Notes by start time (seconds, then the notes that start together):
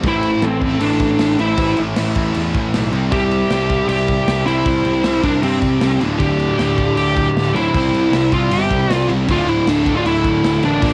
0.03 A1 A2 E3 A3, kick, crash
0.07 E4 C5
0.23 crash
0.42 A1 C4 A4, snare, crash
0.60 A2 E3 A3, kick, crash
0.80 A1 D4 A4, crash
0.99 kick, crash
1.19 A1, snare, crash
1.39 A1 E4 C5, crash
1.57 A1 A2 E3 A3, kick, crash
1.77 A1, crash
1.96 A1, snare, crash
2.15 A1 A2 E3 A3, kick, crash
2.34 E2, crash
2.54 A1, kick, crash
2.74 B1, snare, crash
2.92 C2 C3 G3 C4, crash
3.11 C2 G4 E5, kick, crash
3.31 crash
3.50 C2 C3 G3 C4, snare, crash
3.69 kick, crash
3.88 C2 G4 E5, crash
4.08 kick, crash
4.27 C2, snare, crash
4.46 C2 C3 G3 C4 E4 C5, crash
4.66 C2, kick, crash
4.85 C2, crash
5.03 C2 C3 G3 C4, snare, crash
5.24 C2 D4 A#4, kick, crash
5.41 G2 C4 G4, crash
5.62 C2, kick, crash
5.81 C2, snare, crash
5.99 D1 D2 A2 D3, crash
6.19 D1 D2 A2 G4 D5, kick, crash
6.24 D3
6.40 crash
6.58 D1 D2 A2 D3, snare, crash
6.78 kick, crash
6.97 D1 G4 D5, crash
7.17 kick, crash
7.36 D1, snare, crash
7.54 D1 D2 A2 D3 E4 C5, crash
7.73 C2 C3 G3 C4, kick, crash
7.78 C4
7.94 C2, crash
8.12 C2, snare, crash
8.32 C2 C3 G3 C4 F4 D5, kick, crash
8.51 G1 G4 E5, crash
8.71 C2, kick, crash
8.90 C2 F4, snare, crash
8.95 D5
9.08 C2 G3 C4, crash
9.13 C3
9.28 D1 D2 A2 D3 F4 D5, kick, crash
9.48 E4 C5, crash
9.67 D1 D4 A4, snare, crash
9.85 D2 A2 D3, kick, crash
9.97 F4 D5
10.05 D1 E4, crash
10.09 A4
10.25 kick, crash
10.44 D1, snare, crash
10.62 A1 A2 D3 D4, crash
10.67 D2 A#4
10.81 A#1 A#2 F3 A#3, kick, crash
10.86 A#3